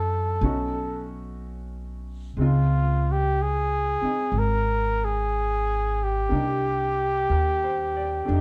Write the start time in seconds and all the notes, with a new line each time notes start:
Already playing: F#2 A3 C#4 E4 A4
0.41 B1 A3 C#4 D#4 F#4
2.37 C#2 G#3 C4
2.41 D#4 F4
3.12 G4
3.42 G#4
4.01 C4 D#4, muted upright bass stroke
4.32 G#1
4.39 A#4
5.05 G#4
6.03 G4
6.29 C2 A#3 D4
6.33 D#4 G4
7.29 D#2 A#4
7.64 C5
7.97 D5
8.25 F2 A3 D4
8.33 D#4 G4